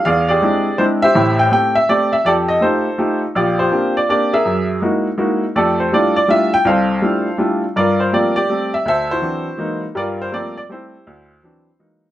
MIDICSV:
0, 0, Header, 1, 2, 480
1, 0, Start_track
1, 0, Key_signature, -1, "major"
1, 0, Tempo, 367197
1, 68, Time_signature, 3, 2, 24, 8
1, 15833, End_track
2, 0, Start_track
2, 0, Title_t, "Upright piano"
2, 0, Program_c, 0, 0
2, 67, Note_on_c, 0, 77, 92
2, 72, Note_on_c, 0, 40, 70
2, 86, Note_on_c, 0, 74, 71
2, 87, Note_on_c, 0, 68, 69
2, 354, Note_off_c, 0, 74, 0
2, 373, Note_on_c, 0, 74, 88
2, 377, Note_off_c, 0, 68, 0
2, 381, Note_off_c, 0, 77, 0
2, 397, Note_on_c, 0, 68, 63
2, 398, Note_on_c, 0, 67, 65
2, 483, Note_off_c, 0, 40, 0
2, 550, Note_on_c, 0, 60, 51
2, 552, Note_on_c, 0, 56, 52
2, 559, Note_on_c, 0, 62, 49
2, 560, Note_on_c, 0, 64, 56
2, 871, Note_off_c, 0, 56, 0
2, 871, Note_off_c, 0, 60, 0
2, 875, Note_off_c, 0, 62, 0
2, 876, Note_off_c, 0, 64, 0
2, 993, Note_off_c, 0, 68, 0
2, 994, Note_off_c, 0, 67, 0
2, 1023, Note_on_c, 0, 72, 85
2, 1031, Note_on_c, 0, 56, 55
2, 1033, Note_on_c, 0, 60, 47
2, 1035, Note_on_c, 0, 62, 47
2, 1040, Note_on_c, 0, 64, 59
2, 1046, Note_off_c, 0, 74, 0
2, 1092, Note_off_c, 0, 72, 0
2, 1339, Note_on_c, 0, 76, 104
2, 1351, Note_off_c, 0, 56, 0
2, 1352, Note_off_c, 0, 60, 0
2, 1353, Note_off_c, 0, 62, 0
2, 1355, Note_off_c, 0, 64, 0
2, 1358, Note_on_c, 0, 72, 72
2, 1361, Note_on_c, 0, 67, 66
2, 1503, Note_on_c, 0, 45, 75
2, 1505, Note_on_c, 0, 33, 72
2, 1821, Note_on_c, 0, 79, 97
2, 1828, Note_off_c, 0, 76, 0
2, 1917, Note_off_c, 0, 45, 0
2, 1919, Note_off_c, 0, 33, 0
2, 1953, Note_off_c, 0, 72, 0
2, 1955, Note_off_c, 0, 67, 0
2, 1978, Note_off_c, 0, 79, 0
2, 1982, Note_on_c, 0, 57, 53
2, 1983, Note_on_c, 0, 60, 45
2, 1989, Note_on_c, 0, 67, 54
2, 1997, Note_on_c, 0, 79, 96
2, 2275, Note_off_c, 0, 79, 0
2, 2293, Note_on_c, 0, 76, 94
2, 2305, Note_off_c, 0, 57, 0
2, 2306, Note_off_c, 0, 60, 0
2, 2309, Note_off_c, 0, 67, 0
2, 2454, Note_off_c, 0, 76, 0
2, 2471, Note_on_c, 0, 57, 56
2, 2471, Note_on_c, 0, 60, 50
2, 2476, Note_on_c, 0, 74, 92
2, 2477, Note_on_c, 0, 67, 60
2, 2780, Note_on_c, 0, 76, 88
2, 2784, Note_off_c, 0, 74, 0
2, 2789, Note_off_c, 0, 57, 0
2, 2790, Note_off_c, 0, 60, 0
2, 2792, Note_off_c, 0, 67, 0
2, 2937, Note_off_c, 0, 76, 0
2, 2939, Note_on_c, 0, 41, 68
2, 2954, Note_on_c, 0, 74, 93
2, 2968, Note_on_c, 0, 69, 69
2, 2970, Note_on_c, 0, 67, 68
2, 3021, Note_off_c, 0, 74, 0
2, 3248, Note_on_c, 0, 75, 86
2, 3354, Note_off_c, 0, 41, 0
2, 3403, Note_off_c, 0, 67, 0
2, 3412, Note_on_c, 0, 57, 48
2, 3413, Note_on_c, 0, 63, 44
2, 3413, Note_on_c, 0, 65, 47
2, 3423, Note_off_c, 0, 69, 0
2, 3423, Note_on_c, 0, 67, 60
2, 3427, Note_off_c, 0, 75, 0
2, 3428, Note_on_c, 0, 72, 83
2, 3443, Note_on_c, 0, 69, 57
2, 3739, Note_off_c, 0, 57, 0
2, 3740, Note_off_c, 0, 63, 0
2, 3740, Note_off_c, 0, 65, 0
2, 3745, Note_off_c, 0, 67, 0
2, 3899, Note_on_c, 0, 57, 53
2, 3903, Note_on_c, 0, 63, 49
2, 3904, Note_on_c, 0, 65, 46
2, 3905, Note_on_c, 0, 67, 60
2, 4157, Note_off_c, 0, 72, 0
2, 4164, Note_off_c, 0, 69, 0
2, 4223, Note_off_c, 0, 57, 0
2, 4224, Note_off_c, 0, 63, 0
2, 4225, Note_off_c, 0, 65, 0
2, 4225, Note_off_c, 0, 67, 0
2, 4384, Note_on_c, 0, 34, 71
2, 4395, Note_on_c, 0, 74, 83
2, 4404, Note_on_c, 0, 65, 65
2, 4409, Note_on_c, 0, 67, 61
2, 4687, Note_off_c, 0, 65, 0
2, 4690, Note_off_c, 0, 67, 0
2, 4696, Note_on_c, 0, 72, 82
2, 4702, Note_off_c, 0, 74, 0
2, 4707, Note_on_c, 0, 65, 56
2, 4709, Note_on_c, 0, 67, 56
2, 4796, Note_off_c, 0, 34, 0
2, 4850, Note_off_c, 0, 67, 0
2, 4851, Note_on_c, 0, 58, 49
2, 4859, Note_on_c, 0, 60, 46
2, 4860, Note_on_c, 0, 62, 45
2, 4869, Note_on_c, 0, 67, 59
2, 5178, Note_off_c, 0, 58, 0
2, 5182, Note_off_c, 0, 60, 0
2, 5182, Note_off_c, 0, 62, 0
2, 5184, Note_off_c, 0, 72, 0
2, 5187, Note_off_c, 0, 67, 0
2, 5189, Note_on_c, 0, 74, 80
2, 5305, Note_off_c, 0, 65, 0
2, 5340, Note_off_c, 0, 74, 0
2, 5345, Note_on_c, 0, 58, 54
2, 5348, Note_on_c, 0, 60, 45
2, 5348, Note_on_c, 0, 62, 49
2, 5351, Note_on_c, 0, 67, 61
2, 5361, Note_on_c, 0, 74, 83
2, 5663, Note_on_c, 0, 68, 60
2, 5664, Note_off_c, 0, 58, 0
2, 5664, Note_off_c, 0, 74, 0
2, 5666, Note_off_c, 0, 60, 0
2, 5666, Note_off_c, 0, 62, 0
2, 5667, Note_off_c, 0, 67, 0
2, 5667, Note_on_c, 0, 70, 60
2, 5668, Note_on_c, 0, 76, 86
2, 5821, Note_on_c, 0, 42, 73
2, 6103, Note_off_c, 0, 76, 0
2, 6233, Note_off_c, 0, 42, 0
2, 6262, Note_off_c, 0, 68, 0
2, 6264, Note_off_c, 0, 70, 0
2, 6299, Note_on_c, 0, 56, 56
2, 6306, Note_on_c, 0, 58, 47
2, 6307, Note_on_c, 0, 63, 46
2, 6310, Note_on_c, 0, 64, 49
2, 6313, Note_on_c, 0, 66, 59
2, 6620, Note_off_c, 0, 56, 0
2, 6624, Note_off_c, 0, 58, 0
2, 6624, Note_off_c, 0, 63, 0
2, 6626, Note_off_c, 0, 64, 0
2, 6628, Note_off_c, 0, 66, 0
2, 6767, Note_on_c, 0, 56, 52
2, 6770, Note_on_c, 0, 58, 54
2, 6773, Note_on_c, 0, 63, 51
2, 6773, Note_on_c, 0, 64, 50
2, 6777, Note_on_c, 0, 66, 62
2, 7094, Note_off_c, 0, 56, 0
2, 7096, Note_off_c, 0, 58, 0
2, 7097, Note_off_c, 0, 63, 0
2, 7097, Note_off_c, 0, 64, 0
2, 7099, Note_off_c, 0, 66, 0
2, 7263, Note_on_c, 0, 41, 69
2, 7267, Note_on_c, 0, 57, 72
2, 7268, Note_on_c, 0, 74, 80
2, 7280, Note_on_c, 0, 67, 62
2, 7283, Note_on_c, 0, 69, 65
2, 7546, Note_off_c, 0, 74, 0
2, 7581, Note_on_c, 0, 72, 70
2, 7674, Note_off_c, 0, 41, 0
2, 7675, Note_off_c, 0, 57, 0
2, 7742, Note_on_c, 0, 55, 53
2, 7745, Note_on_c, 0, 57, 52
2, 7745, Note_on_c, 0, 62, 48
2, 7749, Note_on_c, 0, 64, 47
2, 7750, Note_off_c, 0, 72, 0
2, 7756, Note_on_c, 0, 65, 59
2, 7764, Note_on_c, 0, 74, 87
2, 8000, Note_off_c, 0, 67, 0
2, 8002, Note_off_c, 0, 69, 0
2, 8038, Note_off_c, 0, 74, 0
2, 8057, Note_on_c, 0, 74, 89
2, 8061, Note_off_c, 0, 55, 0
2, 8063, Note_off_c, 0, 57, 0
2, 8063, Note_off_c, 0, 62, 0
2, 8065, Note_off_c, 0, 64, 0
2, 8069, Note_off_c, 0, 65, 0
2, 8211, Note_on_c, 0, 55, 53
2, 8212, Note_off_c, 0, 74, 0
2, 8213, Note_on_c, 0, 57, 51
2, 8219, Note_on_c, 0, 62, 49
2, 8220, Note_on_c, 0, 64, 45
2, 8220, Note_on_c, 0, 65, 65
2, 8243, Note_on_c, 0, 76, 99
2, 8536, Note_off_c, 0, 55, 0
2, 8537, Note_off_c, 0, 57, 0
2, 8540, Note_off_c, 0, 62, 0
2, 8540, Note_off_c, 0, 64, 0
2, 8540, Note_off_c, 0, 65, 0
2, 8543, Note_off_c, 0, 76, 0
2, 8545, Note_on_c, 0, 79, 101
2, 8694, Note_on_c, 0, 36, 75
2, 8696, Note_off_c, 0, 79, 0
2, 8716, Note_on_c, 0, 77, 86
2, 8735, Note_on_c, 0, 72, 63
2, 8738, Note_on_c, 0, 69, 61
2, 9108, Note_off_c, 0, 36, 0
2, 9175, Note_on_c, 0, 55, 50
2, 9176, Note_on_c, 0, 57, 48
2, 9181, Note_on_c, 0, 62, 47
2, 9185, Note_on_c, 0, 64, 48
2, 9187, Note_on_c, 0, 65, 54
2, 9498, Note_off_c, 0, 55, 0
2, 9498, Note_off_c, 0, 57, 0
2, 9501, Note_off_c, 0, 62, 0
2, 9503, Note_off_c, 0, 64, 0
2, 9504, Note_off_c, 0, 65, 0
2, 9613, Note_off_c, 0, 77, 0
2, 9622, Note_off_c, 0, 72, 0
2, 9624, Note_off_c, 0, 69, 0
2, 9647, Note_on_c, 0, 57, 46
2, 9650, Note_on_c, 0, 62, 50
2, 9651, Note_on_c, 0, 55, 53
2, 9659, Note_on_c, 0, 64, 49
2, 9664, Note_on_c, 0, 65, 59
2, 9974, Note_off_c, 0, 57, 0
2, 9975, Note_off_c, 0, 62, 0
2, 9976, Note_off_c, 0, 55, 0
2, 9980, Note_off_c, 0, 64, 0
2, 9982, Note_off_c, 0, 65, 0
2, 10145, Note_on_c, 0, 43, 71
2, 10153, Note_on_c, 0, 74, 90
2, 10169, Note_on_c, 0, 65, 68
2, 10170, Note_on_c, 0, 70, 67
2, 10458, Note_off_c, 0, 74, 0
2, 10461, Note_on_c, 0, 72, 80
2, 10554, Note_off_c, 0, 43, 0
2, 10618, Note_on_c, 0, 53, 53
2, 10622, Note_on_c, 0, 55, 46
2, 10624, Note_on_c, 0, 57, 48
2, 10628, Note_on_c, 0, 60, 56
2, 10630, Note_off_c, 0, 72, 0
2, 10631, Note_on_c, 0, 58, 44
2, 10640, Note_on_c, 0, 74, 88
2, 10886, Note_off_c, 0, 65, 0
2, 10886, Note_off_c, 0, 70, 0
2, 10908, Note_off_c, 0, 74, 0
2, 10928, Note_on_c, 0, 74, 99
2, 10939, Note_off_c, 0, 53, 0
2, 10939, Note_on_c, 0, 67, 64
2, 10942, Note_off_c, 0, 55, 0
2, 10943, Note_off_c, 0, 57, 0
2, 10945, Note_off_c, 0, 60, 0
2, 10946, Note_off_c, 0, 58, 0
2, 11103, Note_on_c, 0, 55, 49
2, 11107, Note_on_c, 0, 57, 48
2, 11114, Note_on_c, 0, 60, 59
2, 11419, Note_off_c, 0, 74, 0
2, 11423, Note_off_c, 0, 55, 0
2, 11424, Note_off_c, 0, 57, 0
2, 11425, Note_on_c, 0, 76, 91
2, 11428, Note_off_c, 0, 60, 0
2, 11540, Note_off_c, 0, 67, 0
2, 11576, Note_on_c, 0, 38, 67
2, 11591, Note_off_c, 0, 76, 0
2, 11611, Note_on_c, 0, 76, 104
2, 11617, Note_on_c, 0, 69, 72
2, 11619, Note_on_c, 0, 72, 72
2, 11893, Note_off_c, 0, 72, 0
2, 11908, Note_off_c, 0, 76, 0
2, 11913, Note_on_c, 0, 72, 97
2, 11914, Note_on_c, 0, 64, 59
2, 11916, Note_on_c, 0, 66, 57
2, 11990, Note_off_c, 0, 38, 0
2, 12048, Note_on_c, 0, 52, 50
2, 12050, Note_on_c, 0, 54, 42
2, 12050, Note_on_c, 0, 60, 45
2, 12057, Note_on_c, 0, 62, 54
2, 12331, Note_off_c, 0, 69, 0
2, 12376, Note_off_c, 0, 52, 0
2, 12377, Note_off_c, 0, 54, 0
2, 12377, Note_off_c, 0, 60, 0
2, 12380, Note_off_c, 0, 62, 0
2, 12521, Note_on_c, 0, 52, 51
2, 12527, Note_on_c, 0, 54, 49
2, 12528, Note_on_c, 0, 56, 51
2, 12534, Note_on_c, 0, 58, 48
2, 12536, Note_on_c, 0, 63, 58
2, 12807, Note_off_c, 0, 72, 0
2, 12808, Note_off_c, 0, 64, 0
2, 12808, Note_off_c, 0, 66, 0
2, 12853, Note_off_c, 0, 52, 0
2, 12856, Note_off_c, 0, 54, 0
2, 12856, Note_off_c, 0, 56, 0
2, 12859, Note_off_c, 0, 58, 0
2, 12860, Note_off_c, 0, 63, 0
2, 13008, Note_on_c, 0, 43, 64
2, 13008, Note_on_c, 0, 55, 71
2, 13032, Note_on_c, 0, 70, 67
2, 13034, Note_on_c, 0, 74, 87
2, 13037, Note_on_c, 0, 65, 69
2, 13101, Note_off_c, 0, 74, 0
2, 13355, Note_on_c, 0, 72, 76
2, 13428, Note_off_c, 0, 43, 0
2, 13428, Note_off_c, 0, 55, 0
2, 13489, Note_on_c, 0, 55, 45
2, 13490, Note_on_c, 0, 53, 53
2, 13494, Note_on_c, 0, 58, 45
2, 13495, Note_on_c, 0, 57, 47
2, 13500, Note_on_c, 0, 60, 57
2, 13514, Note_on_c, 0, 74, 84
2, 13520, Note_off_c, 0, 72, 0
2, 13761, Note_off_c, 0, 70, 0
2, 13763, Note_off_c, 0, 65, 0
2, 13804, Note_off_c, 0, 74, 0
2, 13818, Note_off_c, 0, 53, 0
2, 13818, Note_off_c, 0, 55, 0
2, 13821, Note_off_c, 0, 57, 0
2, 13821, Note_off_c, 0, 58, 0
2, 13823, Note_off_c, 0, 60, 0
2, 13823, Note_on_c, 0, 74, 84
2, 13889, Note_off_c, 0, 74, 0
2, 13979, Note_on_c, 0, 55, 50
2, 13981, Note_on_c, 0, 57, 50
2, 13987, Note_on_c, 0, 60, 56
2, 14010, Note_on_c, 0, 72, 68
2, 14015, Note_on_c, 0, 64, 52
2, 14019, Note_on_c, 0, 67, 50
2, 14304, Note_off_c, 0, 55, 0
2, 14305, Note_off_c, 0, 57, 0
2, 14308, Note_off_c, 0, 60, 0
2, 14449, Note_off_c, 0, 67, 0
2, 14469, Note_on_c, 0, 38, 73
2, 14881, Note_off_c, 0, 38, 0
2, 14946, Note_on_c, 0, 52, 48
2, 14951, Note_on_c, 0, 54, 47
2, 14955, Note_on_c, 0, 60, 44
2, 14956, Note_on_c, 0, 62, 54
2, 15269, Note_off_c, 0, 52, 0
2, 15271, Note_off_c, 0, 54, 0
2, 15273, Note_off_c, 0, 60, 0
2, 15274, Note_off_c, 0, 62, 0
2, 15388, Note_off_c, 0, 72, 0
2, 15390, Note_off_c, 0, 64, 0
2, 15417, Note_on_c, 0, 52, 50
2, 15418, Note_on_c, 0, 54, 45
2, 15422, Note_on_c, 0, 58, 46
2, 15423, Note_on_c, 0, 63, 54
2, 15424, Note_on_c, 0, 56, 45
2, 15745, Note_off_c, 0, 52, 0
2, 15745, Note_off_c, 0, 54, 0
2, 15748, Note_off_c, 0, 56, 0
2, 15748, Note_off_c, 0, 58, 0
2, 15748, Note_off_c, 0, 63, 0
2, 15833, End_track
0, 0, End_of_file